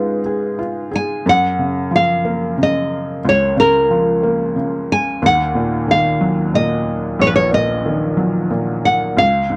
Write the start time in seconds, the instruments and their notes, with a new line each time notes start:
Already playing: felt piano G#2 G#3 F4 G#4, nylon-string guitar B4
0.26 felt piano G#4
0.59 felt piano F4
0.91 felt piano G#4
0.96 nylon-string guitar G#5
1.26 felt piano F#2, nylon-string guitar F#5
1.59 felt piano C#3
1.91 felt piano F3
1.96 nylon-string guitar F5
2.25 felt piano A#3
2.58 felt piano C#3
2.63 nylon-string guitar D#5
3.25 felt piano C#2
3.29 nylon-string guitar C#5
3.57 felt piano C#3, nylon-string guitar A#4
3.91 felt piano F3
4.23 felt piano A#3
4.56 felt piano C#3
4.92 nylon-string guitar G#5
5.22 felt piano D#2, nylon-string guitar F#5
5.55 felt piano A#2
5.88 felt piano D#3, nylon-string guitar F5
6.21 felt piano F#3
6.54 felt piano A#2, nylon-string guitar D#5
7.19 felt piano A#1, nylon-string guitar C#5
7.27 nylon-string guitar B4
7.36 nylon-string guitar C#5
7.53 felt piano A#2, nylon-string guitar D#5
7.86 felt piano D#3
8.17 felt piano F#3
8.50 felt piano A#2
8.85 nylon-string guitar F#5
9.17 felt piano C#2, nylon-string guitar F5
9.50 felt piano G#2